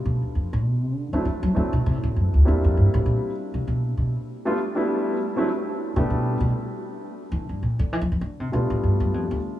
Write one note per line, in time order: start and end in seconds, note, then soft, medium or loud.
0.05 0.21 B2 medium
0.22 0.34 D2 soft
0.35 0.52 F2 medium
0.53 0.65 A2 medium
0.65 0.83 B2 medium
0.83 0.96 C3 medium
0.96 1.12 D3 medium
1.13 1.25 D#3 medium
1.13 1.24 F#3 medium
1.13 1.24 A3 soft
1.13 1.25 C4 medium
1.13 1.25 D4 medium
1.13 1.25 E4 medium
1.25 1.42 E3 medium
1.43 1.55 F#3 loud
1.55 1.72 D3 medium
1.55 1.72 F#3 medium
1.55 1.72 A3 medium
1.55 1.72 C4 soft
1.55 1.72 D4 medium
1.55 1.72 E4 medium
1.73 1.85 B2 medium
1.86 2.03 C3 medium
2.03 2.16 A2 medium
2.16 2.33 F#2 medium
2.34 2.46 D2 medium
2.45 3.29 G3 medium
2.45 3.29 A#3 medium
2.45 3.30 C4 soft
2.45 3.30 D4 soft
2.45 3.30 E4 medium
2.64 2.76 F2 medium
2.77 2.93 G2 medium
2.94 3.05 A2 medium
3.06 3.17 A#2 medium
3.54 3.66 C3 medium
3.67 3.96 B2 medium
3.97 4.15 B2 medium
4.45 4.57 G3 medium
4.45 4.57 A3 medium
4.45 4.57 B3 medium
4.45 4.57 D4 medium
4.45 4.57 F4 medium
4.75 5.16 G3 medium
4.75 5.16 A3 medium
4.75 5.16 B3 medium
4.75 5.16 D4 medium
4.75 5.17 E4 medium
5.36 5.47 F#3 medium
5.36 5.48 A3 medium
5.36 5.48 C4 medium
5.36 5.48 D4 medium
5.36 5.48 E4 medium
5.96 6.09 C3 medium
5.96 6.37 G3 medium
5.96 6.37 A3 medium
5.96 6.37 B3 medium
5.96 6.37 D4 medium
5.96 6.37 G4 medium
6.10 6.38 B2 medium
6.40 6.51 B2 medium
7.32 7.49 E3 medium
7.49 7.61 G2 medium
7.63 7.79 A#2 medium
7.79 7.93 D3 loud
7.93 8.01 E3 medium
8.01 8.11 F3 medium
8.12 8.21 E3 medium
8.21 8.40 D3 medium
8.40 8.52 C3 medium
8.52 8.70 B2 medium
8.52 9.35 G3 soft
8.52 9.36 A3 soft
8.52 9.36 B3 soft
8.52 9.36 D4 soft
8.52 9.36 F4 medium
8.70 8.82 A2 medium
8.83 9.00 G2 medium
9.00 9.14 F#2 medium
9.14 9.30 F2 medium
9.31 9.38 D2 medium